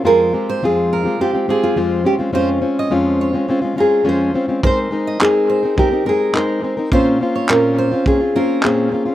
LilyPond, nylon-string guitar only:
\new Staff \with { instrumentName = "Nylon-string guitar" } { \time 4/4 \key aes \major \tempo 4 = 105 bes'4 aes'4 g'8. f'8. g'8 | f'2~ f'8 aes'8 c''4 | c''4 aes'4 g'8 aes'8 c''4 | c''4 bes'4 aes'8 f'8 aes'4 | }